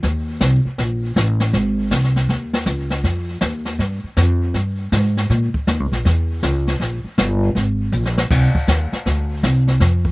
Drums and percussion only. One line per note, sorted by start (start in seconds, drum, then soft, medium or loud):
0.03 brush sweep medium
0.03 kick soft
0.03 snare soft
0.40 kick soft
0.40 snare medium
0.40 hi-hat pedal medium
0.78 brush sweep soft
0.78 kick soft
0.78 snare soft
1.16 kick soft
1.16 snare medium
1.16 hi-hat pedal medium
1.40 snare medium
1.53 brush sweep medium
1.53 kick soft
1.53 snare soft
1.91 kick soft
1.91 snare medium
1.91 hi-hat pedal medium
2.04 snare soft
2.16 snare soft
2.29 brush sweep soft
2.29 kick soft
2.29 snare soft
2.53 snare medium
2.66 kick soft
2.66 snare medium
2.66 hi-hat pedal soft
2.90 snare soft
3.04 brush sweep medium
3.04 kick soft
3.04 snare soft
3.41 kick soft
3.41 snare medium
3.41 hi-hat pedal medium
3.65 snare soft
3.79 brush sweep soft
3.79 kick soft
3.79 snare soft
4.17 kick soft
4.17 snare medium
4.17 hi-hat pedal soft
4.54 brush sweep medium
4.54 kick soft
4.54 snare soft
4.92 kick soft
4.92 snare medium
4.92 hi-hat pedal medium
5.17 snare soft
5.30 brush sweep soft
5.30 kick soft
5.30 snare soft
5.54 kick soft
5.67 kick soft
5.67 snare medium
5.67 hi-hat pedal medium
5.92 snare soft
6.05 brush sweep soft
6.05 kick soft
6.05 snare soft
6.43 kick soft
6.43 snare medium
6.43 hi-hat pedal medium
6.68 snare soft
6.80 brush sweep soft
6.80 kick soft
6.80 snare soft
7.18 kick soft
7.18 snare medium
7.18 hi-hat pedal medium
7.55 brush sweep soft
7.55 kick soft
7.55 snare soft
7.93 hi-hat pedal soft
8.05 snare medium
8.18 snare medium
8.31 brush sweep soft
8.31 kick medium
8.31 snare soft
8.31 crash medium
8.55 kick medium
8.68 kick soft
8.68 snare medium
8.68 hi-hat pedal medium
8.93 snare soft
9.06 brush sweep soft
9.06 kick soft
9.06 snare soft
9.43 kick soft
9.43 snare medium
9.43 hi-hat pedal medium
9.68 snare soft
9.80 brush sweep soft
9.80 kick soft
9.80 snare soft
10.05 kick medium